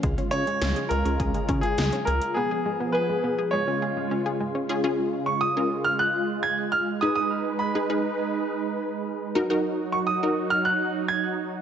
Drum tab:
HH |xxxxxxxxxxxxxxxx|----------------|----------------|----------------|
SD |----o-------o---|----------------|----------------|----------------|
BD |o-------o-o-----|----------------|----------------|----------------|

HH |----------------|
SD |----------------|
BD |----------------|